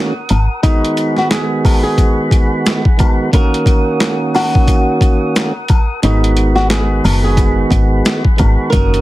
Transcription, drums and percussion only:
0.29 closed hi-hat medium
0.29 high woodblock medium
0.29 maracas medium
0.63 kick loud
0.63 closed hi-hat medium
0.63 maracas medium
0.85 closed hi-hat medium
0.97 closed hi-hat medium
0.97 maracas medium
1.17 snare soft
1.31 snare loud
1.31 clap loud
1.31 closed hi-hat loud
1.31 maracas medium
1.65 kick medium
1.65 open hi-hat medium
1.65 high woodblock medium
1.65 maracas medium
1.98 kick medium
1.98 closed hi-hat medium
1.98 maracas medium
2.31 kick medium
2.31 closed hi-hat medium
2.31 maracas medium
2.66 snare loud
2.66 clap loud
2.66 closed hi-hat loud
2.66 maracas medium
2.85 kick medium
2.99 kick medium
2.99 closed hi-hat medium
2.99 high woodblock medium
2.99 maracas medium
3.33 kick loud
3.33 closed hi-hat medium
3.33 maracas medium
3.54 closed hi-hat medium
3.66 kick medium
3.66 closed hi-hat medium
3.66 maracas medium
4.00 snare loud
4.00 clap medium
4.00 closed hi-hat loud
4.00 maracas medium
4.35 snare soft
4.35 open hi-hat medium
4.35 high woodblock medium
4.35 maracas medium
4.55 kick loud
4.67 kick medium
4.67 closed hi-hat medium
4.67 maracas medium
5.01 kick medium
5.01 closed hi-hat medium
5.01 maracas medium
5.36 snare loud
5.36 clap loud
5.36 closed hi-hat loud
5.36 maracas medium
5.68 kick medium
5.68 closed hi-hat medium
5.68 high woodblock medium
5.68 maracas medium
6.03 closed hi-hat medium
6.03 maracas medium
6.24 closed hi-hat medium
6.36 closed hi-hat medium
6.36 maracas medium
6.56 snare soft
6.70 snare loud
6.70 clap loud
6.70 closed hi-hat loud
6.70 maracas medium
7.04 open hi-hat medium
7.04 high woodblock medium
7.04 maracas medium
7.37 kick medium
7.37 closed hi-hat medium
7.37 maracas medium
7.71 kick medium
7.71 closed hi-hat medium
7.71 maracas medium
8.05 snare loud
8.05 clap loud
8.05 closed hi-hat loud
8.05 maracas medium
8.25 kick medium
8.38 kick medium
8.38 closed hi-hat medium
8.38 high woodblock medium
8.38 maracas medium
8.72 kick loud
8.72 closed hi-hat medium
8.72 maracas medium
8.94 closed hi-hat medium

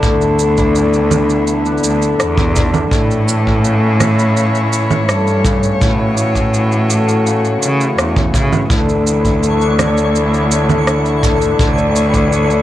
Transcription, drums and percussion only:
0.03 kick medium
0.03 shaker soft
0.21 shaker soft
0.39 shaker medium
0.57 kick medium
0.57 shaker soft
0.75 shaker soft
0.93 shaker soft
1.11 low conga medium
1.11 shaker medium
1.30 shaker soft
1.47 shaker soft
1.66 shaker soft
1.78 shaker soft
1.84 shaker medium
2.02 shaker soft
2.20 cross-stick medium
2.20 shaker soft
2.38 kick loud
2.38 low conga medium
2.38 shaker soft
2.56 kick medium
2.56 shaker medium
2.74 low conga medium
2.74 shaker soft
2.91 kick loud
2.91 shaker soft
3.11 shaker soft
3.28 shaker medium
3.47 kick medium
3.65 shaker soft
4.00 cross-stick medium
4.00 low conga medium
4.00 shaker medium
4.19 shaker soft
4.37 shaker soft
4.55 shaker soft
4.73 shaker medium
4.91 low conga medium
4.91 shaker soft
5.09 cross-stick medium
5.09 shaker soft
5.27 shaker soft
5.45 kick loud
5.45 shaker medium
5.63 shaker soft
5.81 kick loud
5.81 shaker soft
6.17 shaker medium
6.35 kick medium
6.35 shaker soft
6.54 shaker soft
6.72 shaker soft
6.90 shaker medium
7.09 shaker soft
7.27 shaker soft
7.45 shaker soft
7.63 shaker medium
7.81 shaker soft
7.99 cross-stick medium
7.99 shaker soft
8.16 kick loud
8.16 low conga medium
8.16 shaker soft
8.34 kick loud
8.34 shaker medium
8.53 low conga medium
8.53 shaker soft
8.70 kick loud
8.70 shaker soft
8.89 shaker soft
9.07 shaker medium
9.25 kick medium
9.25 shaker soft
9.43 shaker soft
9.61 shaker soft
9.79 cross-stick medium
9.79 low conga medium
9.79 shaker medium
9.97 shaker soft
10.15 shaker soft
10.34 shaker soft
10.52 shaker medium
10.69 low conga medium
10.69 shaker soft
10.87 cross-stick medium
10.87 shaker soft
11.06 shaker soft
11.23 kick loud
11.23 shaker medium
11.42 shaker soft
11.59 kick loud
11.59 shaker soft
11.78 shaker soft
11.96 shaker medium
12.14 kick medium
12.14 shaker soft
12.32 shaker soft
12.50 shaker soft

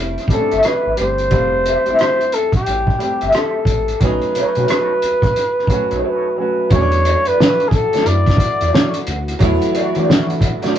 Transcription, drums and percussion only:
0.18 cross-stick soft
0.18 closed hi-hat soft
0.28 kick medium
0.28 closed hi-hat medium
0.52 closed hi-hat soft
0.63 cross-stick medium
0.63 closed hi-hat medium
0.97 closed hi-hat medium
1.18 closed hi-hat soft
1.31 kick loud
1.31 closed hi-hat medium
1.66 closed hi-hat medium
1.86 closed hi-hat soft
1.99 cross-stick loud
1.99 closed hi-hat medium
2.21 closed hi-hat soft
2.32 closed hi-hat medium
2.52 kick medium
2.52 cross-stick soft
2.52 closed hi-hat soft
2.66 closed hi-hat medium
2.87 kick medium
2.87 cross-stick soft
3.00 closed hi-hat medium
3.21 closed hi-hat soft
3.33 cross-stick medium
3.33 closed hi-hat medium
3.65 kick medium
3.65 closed hi-hat medium
3.88 closed hi-hat soft
4.01 kick loud
4.01 closed hi-hat medium
4.22 closed hi-hat soft
4.35 closed hi-hat medium
4.55 closed hi-hat soft
4.68 cross-stick loud
4.68 closed hi-hat medium
5.02 closed hi-hat medium
5.22 kick medium
5.22 cross-stick soft
5.22 closed hi-hat soft
5.36 closed hi-hat medium
5.59 cross-stick soft
5.67 kick medium
5.67 closed hi-hat medium
5.91 closed hi-hat soft
6.71 kick loud
6.71 closed hi-hat medium
6.92 closed hi-hat soft
7.05 closed hi-hat medium
7.25 closed hi-hat soft
7.40 snare loud
7.60 closed hi-hat soft
7.71 kick loud
7.71 closed hi-hat medium
7.93 snare soft
7.93 closed hi-hat soft
8.06 closed hi-hat medium
8.26 kick medium
8.26 snare soft
8.26 closed hi-hat soft
8.37 kick loud
8.37 closed hi-hat medium
8.61 closed hi-hat medium
8.75 snare loud
8.94 closed hi-hat medium
9.07 closed hi-hat medium
9.28 closed hi-hat soft
9.40 kick loud
9.40 closed hi-hat medium
9.62 closed hi-hat soft
9.75 closed hi-hat medium
9.95 closed hi-hat soft
10.10 snare loud
10.30 closed hi-hat soft
10.41 kick medium
10.41 closed hi-hat medium
10.62 snare soft
10.62 closed hi-hat soft
10.76 closed hi-hat medium

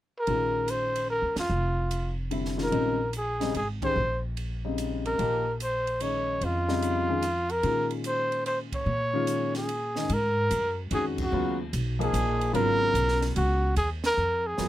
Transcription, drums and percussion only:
0.27 ride soft
0.68 hi-hat pedal medium
0.68 ride medium
0.96 ride medium
1.36 snare medium
1.36 ride medium
1.91 hi-hat pedal medium
1.91 ride medium
2.31 ride soft
2.45 snare soft
2.58 snare soft
2.72 ride soft
3.13 hi-hat pedal soft
3.13 ride medium
3.41 snare soft
3.41 ride soft
3.54 ride medium
3.82 kick medium
3.82 ride medium
4.37 ride medium
4.78 hi-hat pedal soft
4.78 ride medium
5.06 ride soft
5.19 ride soft
5.60 hi-hat pedal soft
5.60 ride medium
5.87 ride soft
6.00 ride medium
6.41 ride soft
6.69 snare soft
6.82 hi-hat pedal soft
6.82 ride medium
7.22 hi-hat pedal soft
7.22 ride medium
7.50 ride soft
7.63 ride soft
7.91 ride soft
8.04 hi-hat pedal soft
8.04 ride medium
8.32 ride soft
8.46 ride soft
8.73 kick medium
8.73 ride medium
9.27 hi-hat pedal medium
9.27 ride medium
9.54 snare soft
9.54 ride soft
9.69 ride medium
9.96 snare soft
10.09 ride medium
10.51 hi-hat pedal medium
10.51 ride medium
10.91 ride medium
11.18 kick medium
11.18 crash medium
11.73 hi-hat pedal medium
11.73 ride medium
12.01 ride soft
12.14 hi-hat pedal medium
12.14 ride medium
12.41 ride soft
12.55 ride medium
12.95 hi-hat pedal medium
12.95 ride medium
13.08 snare soft
13.22 snare soft
13.22 ride soft
13.36 ride medium
13.76 ride medium
14.04 snare medium
14.04 ride medium
14.58 snare soft
14.58 hi-hat pedal medium

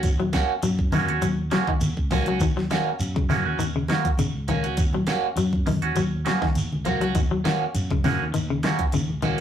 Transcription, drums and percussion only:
0.03 kick medium
0.03 closed hi-hat medium
0.03 high conga soft
0.03 shekere medium
0.20 low conga medium
0.33 kick medium
0.33 snare medium
0.33 closed hi-hat medium
0.33 high conga medium
0.33 shekere soft
0.63 closed hi-hat medium
0.63 high conga soft
0.63 shekere medium
0.79 kick medium
0.92 open hi-hat medium
0.92 high conga medium
0.92 low conga medium
0.92 shekere soft
1.08 closed hi-hat medium
1.22 closed hi-hat medium
1.22 high conga soft
1.22 shekere medium
1.51 snare medium
1.51 closed hi-hat soft
1.51 high conga medium
1.51 shekere soft
1.67 kick medium
1.81 closed hi-hat medium
1.81 high conga medium
1.81 shekere medium
1.97 kick medium
2.11 kick medium
2.11 open hi-hat medium
2.11 low conga medium
2.11 shekere soft
2.26 closed hi-hat medium
2.40 kick medium
2.40 closed hi-hat medium
2.40 shekere medium
2.58 snare soft
2.70 snare medium
2.70 closed hi-hat soft
2.70 high conga medium
2.70 shekere soft
2.99 closed hi-hat medium
2.99 high conga soft
2.99 shekere medium
3.16 kick medium
3.29 snare soft
3.29 open hi-hat medium
3.29 high conga medium
3.29 low conga medium
3.29 shekere soft
3.59 closed hi-hat medium
3.59 shekere medium
3.88 snare medium
3.88 closed hi-hat soft
3.88 high conga medium
3.88 shekere soft
4.05 kick medium
4.05 closed hi-hat soft
4.18 closed hi-hat medium
4.18 high conga medium
4.18 shekere medium
4.48 closed hi-hat soft
4.48 low conga medium
4.48 shekere soft
4.64 closed hi-hat soft
4.77 kick medium
4.77 closed hi-hat medium
4.77 high conga soft
4.77 shekere medium
4.93 low conga medium
5.07 snare medium
5.07 closed hi-hat soft
5.07 high conga medium
5.07 shekere soft
5.37 closed hi-hat medium
5.37 high conga soft
5.37 shekere medium
5.53 kick medium
5.67 open hi-hat medium
5.67 high conga medium
5.67 low conga medium
5.67 shekere soft
5.82 closed hi-hat soft
5.96 closed hi-hat medium
5.96 shekere medium
6.26 snare medium
6.26 closed hi-hat soft
6.26 high conga medium
6.26 shekere soft
6.42 kick medium
6.42 snare soft
6.55 closed hi-hat medium
6.55 high conga medium
6.55 shekere medium
6.72 high conga medium
6.85 closed hi-hat medium
6.85 low conga medium
6.85 shekere soft
7.01 closed hi-hat medium
7.15 kick medium
7.15 closed hi-hat medium
7.15 shekere medium
7.45 snare medium
7.45 closed hi-hat soft
7.45 high conga medium
7.45 shekere soft
7.74 closed hi-hat medium
7.74 high conga soft
7.74 shekere medium
7.91 kick medium
8.04 snare soft
8.04 open hi-hat medium
8.04 high conga medium
8.04 low conga medium
8.04 shekere soft
8.34 closed hi-hat medium
8.34 shekere medium
8.63 snare medium
8.63 closed hi-hat soft
8.63 high conga medium
8.63 shekere soft
8.79 kick medium
8.79 closed hi-hat soft
8.92 closed hi-hat medium
8.92 high conga medium
8.92 shekere medium
9.09 high conga medium
9.22 closed hi-hat soft
9.22 low conga medium
9.22 shekere soft

